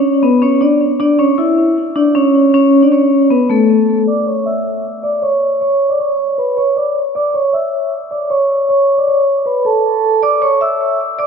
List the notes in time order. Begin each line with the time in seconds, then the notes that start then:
Already playing: C#4 C#5
0.23 B3 B4
0.42 C#4 C#5
0.61 D4 D5
1.00 D4 D5
1.19 C#4 C#5
1.38 E4 E5
1.96 D4 D5
2.15 C#4 C#5
2.54 C#4 C#5
2.83 D4 D5
2.92 C#4 C#5
3.30 B3 B4
3.50 A3 A4
4.07 D5 D6
4.27 C#5 C#6
4.46 E5 E6
5.03 D5 D6
5.22 C#5 C#6
5.61 C#5 C#6
5.90 D5 D6
5.99 C#5 C#6
6.38 B4 B5
6.57 C#5 C#6
6.77 D5 D6
7.15 D5 D6
7.34 C#5 C#6
7.53 E5 E6
8.11 D5 D6
8.30 C#5 C#6
8.69 C#5 C#6
8.98 D5 D6
9.07 C#5 C#6
9.46 B4 B5
9.65 A4 A5
10.22 D5 D6
10.42 C#5 C#6
10.61 E5 E6
11.19 D5 D6